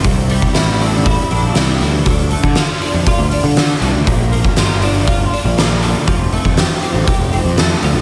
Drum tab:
HH |o-o-o-o-o-o-o-o-|o-o-o-o-o-o-o-o-|o-o-o-o-o-o-o-o-|o-o-o-o-o-o-o-o-|
SD |----o-------o---|----o-------o---|----o-------o---|----o-------o---|
BD |o--o----o-------|o--o----o-------|o--o----o-------|o--o----o-------|